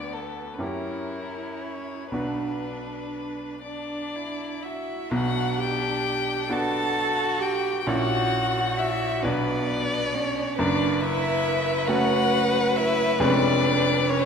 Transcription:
Already playing: D2 B3 D4 F#4 D5
0.13 A4
0.54 B4
0.58 F#2 C#4 E4 G4 A#4
1.61 C#5
2.11 B1 B3 D4 F#4 B4
2.15 D4
3.62 D4 D5
4.16 E4
4.61 E4 F#4 E5
5.11 B1 B2 D4 F#4 F#5
5.58 G4 G5
6.49 B3 D4 F#4 A4 A5
7.39 G4 G5
7.80 G5
7.86 A#1 A#2 C#4 E4 F#4 F#5
8.77 E4 E5
9.23 B1 B2 B3 D4 F#4 B4 D5
10.14 C#4 C#5
10.58 F#1 F#2 D4 B4 D5
11.01 E4 E5
11.88 A3 C#4 F#4 F#5
12.76 E4 E5
13.19 F1 F2 G#3 C#4 D4 B4 D5
14.09 C#4 C#5

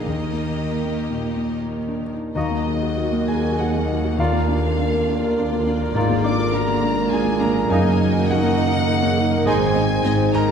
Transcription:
0.05 D#2 D#3 A#3 D#4 G4 A#4 D#5
0.33 A#3
0.58 D#4
0.85 A#3
1.10 A#2
1.37 A#3
1.62 D#4
1.88 D4
2.13 D#4
2.35 D#2 F#3 A#3 D#4 F#4 D#5 A#5
2.51 A#3
2.66 D#4 G#4
2.82 F#4
2.98 D#4 F#4
3.12 A#3
3.27 D#4 G#4 A#4 G#5
3.44 F#4
3.59 D#4 F#4 G#4 F#5
3.74 A#3
3.88 D#4 F#4
4.04 F#4
4.18 D#2 D3 A#3 F4 A#4 D5 F5 A#5
4.33 A#3
4.48 D4 G#4
4.63 A#4
4.77 D4 A#4
4.93 A#3
5.08 D4
5.24 A#4
5.39 D4
5.52 A#3
5.67 D4
5.80 A#4
5.95 G#1 G#2 A#3 F4 G#4 D5 A#5
6.09 A#3
6.24 D4 F4 D5 D6
6.37 A#4
6.52 D4 F#4 A#4 A#5
6.67 A#3
6.82 D4 F4
6.96 A#4
7.11 D4 G#4 G#5
7.25 A#3
7.40 D4 A#4 A#5
7.54 A#4
7.69 F#1 F#2 D#3 A#3 D#4 G#4 D#5 G#5 A#5
7.83 A#3
7.98 D#4 F#4
8.13 A#4
8.28 D#4 A#4 F#5
8.32 F#4
8.43 A#3
8.58 D#4
8.73 A#4
8.88 D#4 G#4
9.02 A#3
9.17 D#4 A#4
9.31 A#4
9.45 G#1 G#2 D#3 G#3 C4 D#4 G#4 C5 D#5 G#5 C6
9.60 C4
9.74 C4 D#4 D#5
9.88 G#4
10.03 G#1 G#2 C4 D#4 D#5
10.17 C4
10.32 C4 D#4 A#4 D#5 A#5
10.48 G#4

